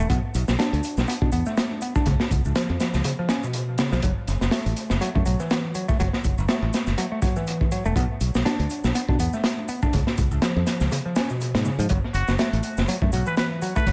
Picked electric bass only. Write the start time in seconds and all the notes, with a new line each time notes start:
0.10 B3
0.59 D4
1.08 B3
1.22 D4
1.32 B3
1.47 A3
1.82 B3
1.96 D4
2.06 C#3
2.56 F3
3.05 C#3
3.19 F3
3.30 C#4
3.44 B2
3.79 C#3
3.92 F3
4.03 F#3
4.52 A3
5.01 F#3
5.15 A3
5.26 F#3
5.40 E3
5.75 F#3
5.88 A3
6.00 F#3
6.48 A3
6.98 F#3
7.12 A3
7.22 F#3
7.36 E3
7.72 F#3
7.85 A3
7.96 B3
8.45 D4
8.95 B3
9.09 D4
9.20 B3
9.34 A3
9.69 B3
9.83 D4
9.93 C#3
10.43 F3
10.92 C#3
11.05 F3
11.16 C#4
11.30 B2
11.65 C#3
11.79 F3
11.90 F#3
12.39 A3
12.88 F#3
13.02 A3
13.13 F#3
13.27 E3
13.62 F#3
13.76 A3
13.87 F#3